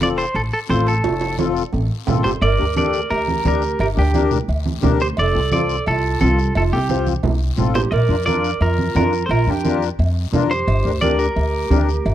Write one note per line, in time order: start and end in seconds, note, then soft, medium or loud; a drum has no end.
0.00 0.22 F1 medium
0.00 0.25 C4 medium
0.00 0.25 F4 medium
0.00 0.26 A4 medium
0.00 0.08 D5 loud
0.00 high conga medium
0.00 high timbale medium
0.00 short guiro medium
0.18 0.35 C5 medium
0.18 high timbale medium
0.18 short guiro medium
0.35 0.49 A1 medium
0.35 0.41 A4 medium
0.35 high timbale medium
0.35 long guiro medium
0.53 0.58 A4 medium
0.69 0.97 A1 loud
0.69 0.94 C4 medium
0.69 0.94 F4 medium
0.69 0.94 A4 medium
0.69 0.86 C5 medium
0.69 high conga medium
0.69 high timbale medium
0.69 low timbale medium
0.69 short guiro medium
0.87 1.36 A4 medium
0.87 high timbale medium
0.87 short guiro medium
1.04 1.60 F1 medium
1.04 high timbale medium
1.04 long guiro medium
1.21 high timbale medium
1.38 1.63 C4 medium
1.38 1.63 F4 medium
1.38 1.63 A4 medium
1.38 high conga medium
1.38 high timbale medium
1.38 short guiro medium
1.57 short guiro medium
1.73 1.87 A1 medium
1.73 low timbale medium
1.73 long guiro medium
2.07 2.23 A1 medium
2.07 2.31 C4 medium
2.07 2.32 F4 medium
2.07 2.32 A4 medium
2.07 high conga medium
2.07 low conga medium
2.07 low timbale loud
2.07 short guiro medium
2.24 2.41 G1 medium
2.24 2.33 G4 medium
2.24 2.29 C5 medium
2.24 low timbale medium
2.24 short guiro medium
2.42 2.56 G1 loud
2.42 2.75 A#4 loud
2.42 2.74 D5 loud
2.42 cowbell loud
2.42 long guiro medium
2.58 3.01 D2 medium
2.58 2.65 D4 medium
2.58 2.65 G4 medium
2.58 2.65 A#4 medium
2.76 3.00 D4 medium
2.76 3.01 G4 medium
2.76 3.01 A4 medium
2.76 3.09 A#4 medium
2.76 3.09 D5 medium
2.76 cowbell medium
2.76 high conga medium
2.76 short guiro medium
2.93 short guiro medium
3.10 3.39 D2 medium
3.10 3.43 G4 medium
3.10 3.46 A#4 loud
3.10 cowbell medium
3.10 long guiro medium
3.28 high conga medium
3.44 3.73 D2 loud
3.44 3.63 D4 medium
3.44 3.63 G4 medium
3.44 3.78 G4 medium
3.44 3.64 A#4 medium
3.44 3.79 A#4 medium
3.44 cowbell medium
3.44 high conga medium
3.44 short guiro medium
3.62 short guiro medium
3.79 3.93 G1 loud
3.79 3.89 G4 medium
3.79 3.86 A#4 medium
3.79 cowbell loud
3.79 long guiro medium
3.96 4.39 D2 loud
3.96 4.02 D4 medium
3.96 4.30 D4 medium
3.96 4.03 G4 medium
3.96 4.30 G4 medium
3.96 4.03 A#4 medium
4.13 4.38 D4 medium
4.13 4.38 G4 medium
4.13 4.38 A#4 medium
4.13 cowbell medium
4.13 high conga medium
4.13 short guiro medium
4.31 low conga medium
4.31 short guiro medium
4.48 4.76 D2 medium
4.48 cowbell medium
4.48 long guiro medium
4.66 high conga medium
4.82 5.11 D2 loud
4.82 5.01 D4 medium
4.82 5.01 G4 medium
4.82 5.01 A#4 medium
4.82 cowbell medium
4.82 high conga medium
4.82 low conga medium
4.82 low timbale medium
4.82 short guiro medium
5.00 5.09 G4 medium
5.00 5.07 C5 loud
5.00 short guiro medium
5.17 5.32 F1 loud
5.17 5.51 A4 loud
5.17 5.51 D5 loud
5.17 cowbell loud
5.17 long guiro medium
5.33 5.77 C2 medium
5.33 5.40 C4 medium
5.33 5.40 F4 medium
5.33 5.40 A4 medium
5.52 5.76 C4 medium
5.52 5.76 F4 medium
5.52 5.76 A4 medium
5.52 5.84 D5 loud
5.52 cowbell medium
5.52 high conga medium
5.52 short guiro medium
5.56 5.86 A4 medium
5.69 short guiro medium
5.86 6.14 C2 loud
5.86 6.20 F4 medium
5.86 6.19 A4 loud
5.86 cowbell medium
5.86 long guiro medium
6.20 6.49 C2 loud
6.20 6.39 C4 medium
6.20 6.39 F4 medium
6.20 6.55 F4 medium
6.20 6.53 A4 medium
6.20 6.39 A4 medium
6.20 cowbell medium
6.20 high conga medium
6.20 low timbale medium
6.20 short guiro medium
6.39 short guiro medium
6.55 6.69 F1 loud
6.55 6.74 F4 medium
6.55 6.62 A4 medium
6.55 cowbell loud
6.55 long guiro medium
6.72 7.14 C2 medium
6.72 6.79 C4 medium
6.72 7.08 C4 medium
6.72 6.79 F4 medium
6.72 7.07 G4 medium
6.72 6.79 A4 medium
6.89 7.14 C4 medium
6.89 7.14 F4 medium
6.89 7.14 C5 medium
6.89 cowbell medium
6.89 high conga medium
6.89 short guiro medium
7.07 high conga medium
7.07 short guiro medium
7.23 7.51 C2 medium
7.23 cowbell medium
7.23 low conga loud
7.23 long guiro medium
7.57 7.86 A1 medium
7.57 7.76 C4 medium
7.57 7.76 F4 medium
7.57 7.77 A4 medium
7.57 cowbell medium
7.57 low conga medium
7.57 short guiro medium
7.75 7.92 G4 medium
7.75 7.80 C5 medium
7.75 low conga medium
7.75 short guiro medium
7.91 8.06 A#1 loud
7.91 8.26 A#4 loud
7.91 8.25 D5 loud
7.91 cowbell loud
7.91 long guiro medium
8.09 8.51 F2 loud
8.09 8.16 D4 medium
8.09 8.16 F4 medium
8.09 8.16 A#4 medium
8.25 8.50 D4 medium
8.25 8.51 F4 medium
8.25 8.51 A#4 medium
8.25 8.59 A#4 medium
8.25 8.62 D5 medium
8.25 cowbell medium
8.25 high conga medium
8.25 short guiro medium
8.44 short guiro medium
8.61 8.89 F2 medium
8.61 8.94 F4 medium
8.61 8.95 A#4 loud
8.61 cowbell medium
8.61 long guiro medium
8.79 high conga medium
8.94 9.23 F2 loud
8.94 9.13 D4 medium
8.94 9.14 F4 medium
8.94 9.24 F4 medium
8.94 9.14 A#4 medium
8.94 9.24 A#4 medium
8.94 cowbell medium
8.94 high conga medium
8.94 low timbale medium
8.94 short guiro medium
9.13 short guiro medium
9.26 9.43 A#1 loud
9.26 9.30 A4 medium
9.26 9.30 C5 medium
9.26 long guiro medium
9.31 9.49 F4 medium
9.31 9.50 A#4 medium
9.31 cowbell loud
9.47 9.88 F2 medium
9.47 9.53 D4 medium
9.47 9.82 D4 medium
9.47 9.54 F4 medium
9.47 9.83 G4 medium
9.47 9.54 A#4 medium
9.64 9.89 D4 medium
9.64 9.89 F4 medium
9.64 9.89 A#4 medium
9.64 cowbell medium
9.64 high conga medium
9.64 short guiro medium
9.82 short guiro medium
9.99 10.27 F2 loud
9.99 cowbell medium
9.99 long guiro medium
10.32 10.61 F2 loud
10.32 10.52 D4 medium
10.32 10.52 F4 medium
10.32 10.52 A#4 medium
10.32 cowbell medium
10.32 high conga medium
10.32 low conga medium
10.32 short guiro medium
10.51 10.99 G4 medium
10.51 10.99 C5 loud
10.51 short guiro medium
10.67 10.82 G1 loud
10.67 cowbell loud
10.67 long guiro medium
10.85 11.26 D2 medium
10.85 10.91 D4 medium
10.85 10.91 G4 medium
10.85 10.92 A#4 medium
11.01 11.26 D4 medium
11.01 11.27 G4 medium
11.01 11.26 A#4 medium
11.01 11.18 A#4 medium
11.01 11.18 D5 loud
11.01 cowbell medium
11.01 high conga medium
11.01 short guiro medium
11.18 12.14 G4 medium
11.18 12.14 A#4 medium
11.18 short guiro medium
11.36 11.64 D2 medium
11.36 cowbell medium
11.36 long guiro medium
11.70 11.98 D2 loud
11.70 11.89 D4 medium
11.70 11.89 G4 medium
11.70 11.89 A#4 medium
11.70 cowbell medium
11.70 high conga medium
11.70 low timbale medium
11.70 short guiro medium
11.89 short guiro medium
12.05 12.14 G1 loud
12.05 cowbell loud
12.05 long guiro medium